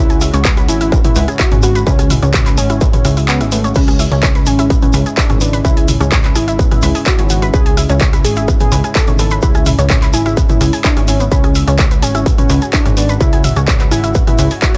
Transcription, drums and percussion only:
0.10 closed hi-hat, shekere
0.21 cross-stick, open hi-hat, shekere
0.33 closed hi-hat, shekere
0.45 kick, clap, closed hi-hat, shekere
0.57 cross-stick, closed hi-hat, shekere
0.68 open hi-hat, shekere
0.81 closed hi-hat, shekere
0.92 kick, cross-stick, closed hi-hat, shekere
1.04 closed hi-hat, mid tom, shekere
1.16 open hi-hat, shekere
1.28 cross-stick, closed hi-hat, shekere
1.39 kick, clap, open hi-hat, shekere
1.51 closed hi-hat, mid tom, shekere
1.63 cross-stick, open hi-hat, shekere
1.75 closed hi-hat, shekere
1.87 kick, closed hi-hat, shekere
1.99 cross-stick, closed hi-hat, shekere
2.10 mid tom, open hi-hat, shekere
2.23 closed hi-hat, shekere
2.34 kick, cross-stick, clap, closed hi-hat, mid tom, shekere
2.46 clap, closed hi-hat, shekere
2.57 open hi-hat, shekere
2.69 cross-stick, closed hi-hat, shekere
2.81 kick, closed hi-hat, shekere
2.93 closed hi-hat, mid tom, shekere
3.05 cross-stick, open hi-hat, shekere
3.17 open hi-hat, shekere
3.28 clap, closed hi-hat, shekere
3.41 cross-stick, closed hi-hat, shekere
3.52 open hi-hat, shekere
3.64 closed hi-hat, shekere
3.75 kick, closed hi-hat, crash, shekere
3.88 cross-stick, closed hi-hat, shekere
3.99 open hi-hat, shekere
4.12 closed hi-hat, shekere
4.23 kick, cross-stick, clap, closed hi-hat, shekere
4.35 closed hi-hat, shekere
4.46 open hi-hat, shekere
4.59 cross-stick, closed hi-hat, shekere
4.70 kick, closed hi-hat, shekere
4.82 closed hi-hat, mid tom, shekere
4.93 cross-stick, open hi-hat, shekere
5.06 closed hi-hat, shekere
5.17 kick, clap, open hi-hat, shekere
5.29 cross-stick, closed hi-hat, mid tom, shekere
5.41 open hi-hat, shekere
5.53 closed hi-hat, shekere
5.65 kick, cross-stick, closed hi-hat, shekere
5.77 closed hi-hat, shekere
5.88 mid tom, open hi-hat, shekere
6.01 cross-stick, closed hi-hat, shekere
6.12 kick, clap, closed hi-hat, mid tom, shekere
6.24 clap, closed hi-hat, shekere
6.35 cross-stick, open hi-hat, shekere
6.48 closed hi-hat, shekere
6.59 kick, closed hi-hat, shekere
6.71 cross-stick, closed hi-hat, mid tom, shekere
6.82 open hi-hat, shekere
6.95 open hi-hat, shekere
7.06 kick, cross-stick, clap, closed hi-hat, shekere
7.18 closed hi-hat, shekere
7.30 open hi-hat, shekere
7.42 cross-stick, closed hi-hat, shekere
7.54 kick, closed hi-hat, shekere
7.66 closed hi-hat, shekere
7.77 cross-stick, open hi-hat, shekere
7.89 closed hi-hat, shekere
8.00 kick, clap, closed hi-hat, shekere
8.13 cross-stick, closed hi-hat, shekere
8.25 open hi-hat, shekere
8.36 closed hi-hat, shekere
8.48 kick, cross-stick, closed hi-hat, shekere
8.60 closed hi-hat, mid tom, shekere
8.72 open hi-hat, shekere
8.84 cross-stick, closed hi-hat, shekere
8.95 kick, clap, open hi-hat, shekere
9.07 closed hi-hat, mid tom, shekere
9.19 cross-stick, open hi-hat, shekere
9.30 closed hi-hat, shekere
9.42 kick, closed hi-hat, shekere
9.55 cross-stick, closed hi-hat, shekere
9.66 mid tom, open hi-hat, shekere
9.79 closed hi-hat, shekere
9.89 kick, cross-stick, clap, closed hi-hat, mid tom, shekere
10.02 clap, closed hi-hat, shekere
10.13 open hi-hat, shekere
10.26 cross-stick, closed hi-hat, shekere
10.37 kick, closed hi-hat, shekere
10.49 closed hi-hat, mid tom, shekere
10.61 cross-stick, open hi-hat, shekere
10.73 open hi-hat, shekere
10.84 kick, clap, closed hi-hat, shekere
10.97 cross-stick, closed hi-hat, shekere
11.08 open hi-hat, shekere
11.20 closed hi-hat, shekere
11.32 kick, closed hi-hat, shekere
11.43 cross-stick, closed hi-hat, shekere
11.55 open hi-hat, shekere
11.67 closed hi-hat, shekere
11.79 kick, cross-stick, clap, closed hi-hat, shekere
11.91 closed hi-hat, shekere
12.02 open hi-hat, shekere
12.15 cross-stick, closed hi-hat, shekere
12.26 kick, closed hi-hat, shekere
12.38 closed hi-hat, mid tom, shekere
12.49 cross-stick, open hi-hat, shekere
12.62 closed hi-hat, shekere
12.73 kick, clap, open hi-hat, shekere
12.86 cross-stick, closed hi-hat, mid tom, shekere
12.97 open hi-hat, shekere
13.09 closed hi-hat, shekere
13.20 kick, cross-stick, closed hi-hat, shekere
13.32 closed hi-hat, shekere
13.44 mid tom, open hi-hat, shekere
13.56 cross-stick, closed hi-hat, shekere
13.68 kick, clap, closed hi-hat, mid tom, shekere
13.80 clap, closed hi-hat, shekere
13.91 cross-stick, open hi-hat, shekere
14.04 closed hi-hat, shekere
14.15 kick, closed hi-hat, shekere
14.27 cross-stick, closed hi-hat, mid tom, shekere
14.39 open hi-hat, shekere
14.50 open hi-hat, shekere
14.62 kick, cross-stick, clap, closed hi-hat, shekere
14.74 closed hi-hat, shekere

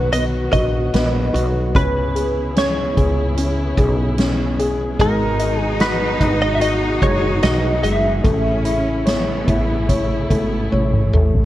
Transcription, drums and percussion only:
0.12 closed hi-hat
0.53 kick, closed hi-hat
0.94 snare, closed hi-hat
1.35 closed hi-hat
1.75 kick, closed hi-hat
2.16 closed hi-hat
2.56 snare, closed hi-hat
2.97 kick, closed hi-hat
3.37 closed hi-hat
3.77 kick, closed hi-hat
4.18 snare, closed hi-hat
4.59 closed hi-hat
4.99 kick, closed hi-hat
5.40 closed hi-hat
5.80 snare, closed hi-hat
6.21 kick, closed hi-hat
6.61 closed hi-hat
7.02 kick, closed hi-hat
7.42 snare, closed hi-hat
7.84 closed hi-hat
8.24 kick, closed hi-hat
8.65 closed hi-hat
9.07 snare, closed hi-hat
9.48 kick, closed hi-hat
9.89 kick, closed hi-hat
10.30 kick, closed hi-hat
10.72 high tom
10.93 mid tom
11.14 mid tom
11.35 floor tom

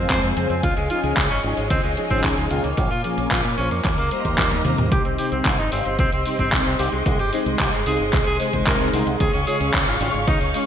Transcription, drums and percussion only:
0.10 kick, clap, closed hi-hat
0.23 closed hi-hat
0.37 closed hi-hat
0.50 closed hi-hat
0.63 kick, closed hi-hat
0.77 closed hi-hat
0.90 closed hi-hat
1.04 closed hi-hat
1.17 kick, clap, closed hi-hat
1.30 closed hi-hat
1.44 closed hi-hat
1.57 closed hi-hat
1.70 kick, closed hi-hat
1.84 closed hi-hat
1.97 closed hi-hat
2.10 kick, closed hi-hat
2.24 kick, clap, closed hi-hat
2.37 closed hi-hat
2.51 closed hi-hat
2.64 closed hi-hat
2.77 kick, closed hi-hat
2.91 closed hi-hat
3.04 closed hi-hat
3.18 closed hi-hat
3.31 kick, clap, closed hi-hat
3.44 closed hi-hat
3.58 closed hi-hat
3.71 closed hi-hat
3.85 kick, clap, closed hi-hat
3.98 closed hi-hat
4.11 closed hi-hat
4.25 kick, closed hi-hat
4.38 kick, clap, closed hi-hat, high tom
4.52 closed hi-hat, high tom
4.65 closed hi-hat, mid tom
4.78 closed hi-hat, mid tom
4.92 kick, closed hi-hat
5.05 closed hi-hat
5.18 open hi-hat
5.32 closed hi-hat
5.45 kick, clap, closed hi-hat
5.59 closed hi-hat
5.72 open hi-hat
5.85 closed hi-hat
5.99 kick, closed hi-hat
6.12 closed hi-hat
6.26 open hi-hat
6.39 kick, closed hi-hat
6.52 kick, clap, closed hi-hat
6.66 closed hi-hat
6.79 open hi-hat
6.93 closed hi-hat
7.06 kick, closed hi-hat
7.19 closed hi-hat
7.33 open hi-hat
7.46 closed hi-hat
7.59 kick, clap, closed hi-hat
7.73 closed hi-hat
7.86 open hi-hat
8.00 closed hi-hat
8.13 kick, clap, closed hi-hat
8.27 closed hi-hat
8.40 open hi-hat
8.53 kick, closed hi-hat
8.67 kick, clap, closed hi-hat
8.80 closed hi-hat
8.93 open hi-hat
9.07 closed hi-hat
9.20 kick, closed hi-hat
9.34 closed hi-hat
9.47 open hi-hat
9.60 closed hi-hat
9.74 kick, clap, closed hi-hat
9.87 closed hi-hat
10.01 open hi-hat
10.14 closed hi-hat
10.28 kick, closed hi-hat
10.41 closed hi-hat
10.54 open hi-hat

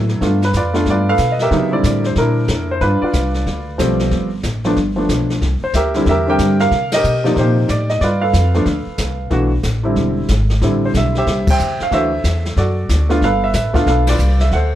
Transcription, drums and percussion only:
0.09 snare
0.21 brush sweep, kick, snare
0.42 snare
0.53 kick, snare, hi-hat pedal
0.74 snare
0.86 brush sweep, kick, snare
1.18 kick, snare, hi-hat pedal
1.39 snare
1.51 brush sweep, kick, snare
1.84 kick, snare, hi-hat pedal
2.04 snare
2.15 brush sweep, kick, snare
2.48 kick, snare, hi-hat pedal
2.81 brush sweep, kick, snare
3.13 kick, snare, hi-hat pedal
3.34 snare
3.46 brush sweep, kick, snare
3.79 kick, snare, hi-hat pedal
3.99 snare
4.11 brush sweep, kick, snare
4.43 kick, snare, hi-hat pedal
4.64 snare
4.76 brush sweep, kick, snare
5.09 kick, snare, hi-hat pedal
5.30 snare
5.41 brush sweep, kick, snare
5.73 kick, snare, hi-hat pedal
5.94 snare
6.06 brush sweep, kick, snare
6.38 kick, snare, hi-hat pedal
6.59 snare
6.71 brush sweep, kick, snare
6.92 snare, ride
7.04 hi-hat pedal
7.25 snare
7.36 brush sweep, kick, snare
7.68 kick, snare, hi-hat pedal
7.89 snare
8.01 brush sweep, kick, snare
8.33 kick, snare, hi-hat pedal
8.54 snare
8.65 brush sweep, kick, snare
8.98 kick, snare, hi-hat pedal
9.30 brush sweep, kick, snare
9.63 kick, snare, hi-hat pedal
9.96 brush sweep, kick, snare
10.28 kick, snare, hi-hat pedal
10.50 snare
10.61 brush sweep, kick, snare
10.94 kick, snare, hi-hat pedal
11.15 snare
11.27 brush sweep, kick, snare
11.47 kick, crash
11.59 hi-hat pedal
11.80 snare
11.91 brush sweep, kick, snare
12.24 kick, snare, hi-hat pedal
12.45 snare
12.57 brush sweep, kick, snare
12.89 kick, snare, hi-hat pedal
13.10 snare
13.21 brush sweep, kick, snare
13.53 kick, snare, hi-hat pedal
13.74 kick, snare
13.86 brush sweep, kick, snare
14.07 snare, ride
14.19 hi-hat pedal
14.40 snare
14.51 brush sweep, kick, snare

